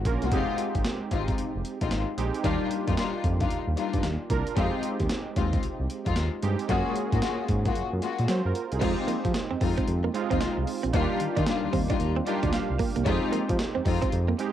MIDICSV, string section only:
0, 0, Header, 1, 2, 480
1, 0, Start_track
1, 0, Tempo, 530973
1, 287, Time_signature, 4, 2, 24, 8
1, 13129, End_track
2, 0, Start_track
2, 0, Title_t, "String section"
2, 0, Program_c, 0, 48
2, 196, Note_on_c, 0, 56, 73
2, 196, Note_on_c, 0, 58, 59
2, 198, Note_on_c, 0, 65, 63
2, 201, Note_on_c, 0, 66, 75
2, 273, Note_off_c, 0, 56, 0
2, 278, Note_off_c, 0, 65, 0
2, 283, Note_on_c, 0, 56, 98
2, 286, Note_on_c, 0, 60, 83
2, 287, Note_on_c, 0, 63, 88
2, 289, Note_on_c, 0, 65, 105
2, 361, Note_off_c, 0, 58, 0
2, 364, Note_off_c, 0, 66, 0
2, 511, Note_off_c, 0, 56, 0
2, 513, Note_off_c, 0, 60, 0
2, 513, Note_off_c, 0, 63, 0
2, 514, Note_off_c, 0, 65, 0
2, 1000, Note_on_c, 0, 56, 76
2, 1002, Note_on_c, 0, 60, 67
2, 1004, Note_on_c, 0, 63, 68
2, 1006, Note_on_c, 0, 65, 77
2, 1199, Note_off_c, 0, 56, 0
2, 1200, Note_off_c, 0, 60, 0
2, 1201, Note_off_c, 0, 63, 0
2, 1202, Note_off_c, 0, 65, 0
2, 1634, Note_on_c, 0, 56, 66
2, 1636, Note_on_c, 0, 60, 67
2, 1639, Note_on_c, 0, 63, 65
2, 1640, Note_on_c, 0, 65, 76
2, 1800, Note_off_c, 0, 56, 0
2, 1801, Note_off_c, 0, 60, 0
2, 1803, Note_off_c, 0, 63, 0
2, 1804, Note_off_c, 0, 65, 0
2, 2201, Note_on_c, 0, 55, 98
2, 2203, Note_on_c, 0, 62, 93
2, 2204, Note_on_c, 0, 63, 92
2, 2207, Note_on_c, 0, 65, 105
2, 2399, Note_off_c, 0, 55, 0
2, 2400, Note_off_c, 0, 62, 0
2, 2401, Note_off_c, 0, 63, 0
2, 2402, Note_off_c, 0, 65, 0
2, 2595, Note_on_c, 0, 55, 70
2, 2598, Note_on_c, 0, 62, 69
2, 2598, Note_on_c, 0, 63, 70
2, 2600, Note_on_c, 0, 65, 86
2, 2671, Note_off_c, 0, 55, 0
2, 2673, Note_off_c, 0, 62, 0
2, 2675, Note_off_c, 0, 63, 0
2, 2678, Note_off_c, 0, 65, 0
2, 2682, Note_on_c, 0, 55, 76
2, 2684, Note_on_c, 0, 62, 64
2, 2686, Note_on_c, 0, 63, 66
2, 2689, Note_on_c, 0, 65, 82
2, 2880, Note_off_c, 0, 55, 0
2, 2881, Note_off_c, 0, 62, 0
2, 2882, Note_off_c, 0, 63, 0
2, 2883, Note_off_c, 0, 65, 0
2, 3076, Note_on_c, 0, 55, 73
2, 3077, Note_on_c, 0, 62, 62
2, 3079, Note_on_c, 0, 63, 65
2, 3080, Note_on_c, 0, 65, 77
2, 3241, Note_off_c, 0, 55, 0
2, 3242, Note_off_c, 0, 62, 0
2, 3243, Note_off_c, 0, 63, 0
2, 3243, Note_off_c, 0, 65, 0
2, 3406, Note_on_c, 0, 55, 76
2, 3407, Note_on_c, 0, 62, 72
2, 3409, Note_on_c, 0, 63, 70
2, 3412, Note_on_c, 0, 65, 77
2, 3602, Note_off_c, 0, 55, 0
2, 3602, Note_off_c, 0, 62, 0
2, 3603, Note_off_c, 0, 63, 0
2, 3605, Note_off_c, 0, 65, 0
2, 4127, Note_on_c, 0, 56, 96
2, 4129, Note_on_c, 0, 60, 87
2, 4130, Note_on_c, 0, 63, 89
2, 4134, Note_on_c, 0, 65, 98
2, 4353, Note_off_c, 0, 56, 0
2, 4354, Note_off_c, 0, 60, 0
2, 4355, Note_off_c, 0, 63, 0
2, 4356, Note_off_c, 0, 65, 0
2, 4848, Note_on_c, 0, 56, 76
2, 4849, Note_on_c, 0, 60, 67
2, 4850, Note_on_c, 0, 63, 64
2, 4852, Note_on_c, 0, 65, 83
2, 5043, Note_off_c, 0, 56, 0
2, 5043, Note_off_c, 0, 60, 0
2, 5044, Note_off_c, 0, 63, 0
2, 5045, Note_off_c, 0, 65, 0
2, 5475, Note_on_c, 0, 56, 65
2, 5476, Note_on_c, 0, 60, 66
2, 5477, Note_on_c, 0, 63, 65
2, 5480, Note_on_c, 0, 65, 79
2, 5641, Note_off_c, 0, 56, 0
2, 5641, Note_off_c, 0, 60, 0
2, 5642, Note_off_c, 0, 63, 0
2, 5643, Note_off_c, 0, 65, 0
2, 6049, Note_on_c, 0, 56, 103
2, 6051, Note_on_c, 0, 65, 85
2, 6052, Note_on_c, 0, 58, 94
2, 6055, Note_on_c, 0, 66, 108
2, 6243, Note_off_c, 0, 56, 0
2, 6244, Note_off_c, 0, 65, 0
2, 6245, Note_off_c, 0, 58, 0
2, 6246, Note_off_c, 0, 66, 0
2, 6433, Note_on_c, 0, 56, 76
2, 6436, Note_on_c, 0, 58, 70
2, 6438, Note_on_c, 0, 65, 65
2, 6440, Note_on_c, 0, 66, 84
2, 6515, Note_off_c, 0, 56, 0
2, 6515, Note_off_c, 0, 58, 0
2, 6519, Note_off_c, 0, 65, 0
2, 6520, Note_off_c, 0, 66, 0
2, 6525, Note_on_c, 0, 56, 71
2, 6526, Note_on_c, 0, 58, 68
2, 6530, Note_on_c, 0, 65, 66
2, 6531, Note_on_c, 0, 66, 76
2, 6722, Note_off_c, 0, 56, 0
2, 6722, Note_off_c, 0, 58, 0
2, 6724, Note_off_c, 0, 65, 0
2, 6724, Note_off_c, 0, 66, 0
2, 6917, Note_on_c, 0, 56, 72
2, 6919, Note_on_c, 0, 58, 67
2, 6921, Note_on_c, 0, 65, 65
2, 6924, Note_on_c, 0, 66, 78
2, 7082, Note_off_c, 0, 56, 0
2, 7083, Note_off_c, 0, 58, 0
2, 7084, Note_off_c, 0, 65, 0
2, 7085, Note_off_c, 0, 66, 0
2, 7249, Note_on_c, 0, 56, 78
2, 7250, Note_on_c, 0, 58, 67
2, 7251, Note_on_c, 0, 65, 64
2, 7252, Note_on_c, 0, 66, 83
2, 7443, Note_off_c, 0, 56, 0
2, 7444, Note_off_c, 0, 58, 0
2, 7444, Note_off_c, 0, 65, 0
2, 7445, Note_off_c, 0, 66, 0
2, 7964, Note_on_c, 0, 56, 93
2, 7965, Note_on_c, 0, 60, 88
2, 7968, Note_on_c, 0, 63, 87
2, 7970, Note_on_c, 0, 65, 101
2, 8192, Note_off_c, 0, 56, 0
2, 8192, Note_off_c, 0, 60, 0
2, 8193, Note_off_c, 0, 63, 0
2, 8194, Note_off_c, 0, 65, 0
2, 8686, Note_on_c, 0, 56, 78
2, 8689, Note_on_c, 0, 60, 70
2, 8689, Note_on_c, 0, 63, 67
2, 8692, Note_on_c, 0, 65, 81
2, 8882, Note_off_c, 0, 56, 0
2, 8883, Note_off_c, 0, 60, 0
2, 8883, Note_off_c, 0, 63, 0
2, 8885, Note_off_c, 0, 65, 0
2, 9316, Note_on_c, 0, 56, 74
2, 9319, Note_on_c, 0, 60, 67
2, 9319, Note_on_c, 0, 63, 70
2, 9322, Note_on_c, 0, 65, 84
2, 9481, Note_off_c, 0, 56, 0
2, 9483, Note_off_c, 0, 60, 0
2, 9483, Note_off_c, 0, 63, 0
2, 9484, Note_off_c, 0, 65, 0
2, 9888, Note_on_c, 0, 55, 102
2, 9889, Note_on_c, 0, 62, 91
2, 9890, Note_on_c, 0, 63, 88
2, 9892, Note_on_c, 0, 65, 111
2, 10083, Note_off_c, 0, 55, 0
2, 10083, Note_off_c, 0, 62, 0
2, 10084, Note_off_c, 0, 63, 0
2, 10085, Note_off_c, 0, 65, 0
2, 10276, Note_on_c, 0, 55, 74
2, 10279, Note_on_c, 0, 62, 68
2, 10280, Note_on_c, 0, 63, 75
2, 10282, Note_on_c, 0, 65, 82
2, 10354, Note_off_c, 0, 55, 0
2, 10355, Note_off_c, 0, 62, 0
2, 10358, Note_off_c, 0, 63, 0
2, 10360, Note_off_c, 0, 65, 0
2, 10365, Note_on_c, 0, 55, 76
2, 10366, Note_on_c, 0, 62, 70
2, 10369, Note_on_c, 0, 63, 67
2, 10371, Note_on_c, 0, 65, 88
2, 10561, Note_off_c, 0, 55, 0
2, 10562, Note_off_c, 0, 62, 0
2, 10563, Note_off_c, 0, 63, 0
2, 10564, Note_off_c, 0, 65, 0
2, 10755, Note_on_c, 0, 55, 78
2, 10756, Note_on_c, 0, 62, 69
2, 10758, Note_on_c, 0, 63, 71
2, 10761, Note_on_c, 0, 65, 82
2, 10921, Note_off_c, 0, 55, 0
2, 10921, Note_off_c, 0, 62, 0
2, 10922, Note_off_c, 0, 63, 0
2, 10924, Note_off_c, 0, 65, 0
2, 11087, Note_on_c, 0, 55, 83
2, 11087, Note_on_c, 0, 62, 68
2, 11089, Note_on_c, 0, 63, 74
2, 11092, Note_on_c, 0, 65, 79
2, 11282, Note_off_c, 0, 55, 0
2, 11282, Note_off_c, 0, 62, 0
2, 11283, Note_off_c, 0, 63, 0
2, 11285, Note_off_c, 0, 65, 0
2, 11803, Note_on_c, 0, 56, 97
2, 11805, Note_on_c, 0, 60, 93
2, 11805, Note_on_c, 0, 63, 98
2, 11808, Note_on_c, 0, 65, 107
2, 12031, Note_off_c, 0, 56, 0
2, 12032, Note_off_c, 0, 60, 0
2, 12032, Note_off_c, 0, 63, 0
2, 12033, Note_off_c, 0, 65, 0
2, 12523, Note_on_c, 0, 56, 71
2, 12525, Note_on_c, 0, 60, 68
2, 12526, Note_on_c, 0, 63, 68
2, 12527, Note_on_c, 0, 65, 84
2, 12721, Note_off_c, 0, 56, 0
2, 12721, Note_off_c, 0, 60, 0
2, 12722, Note_off_c, 0, 63, 0
2, 12722, Note_off_c, 0, 65, 0
2, 13129, End_track
0, 0, End_of_file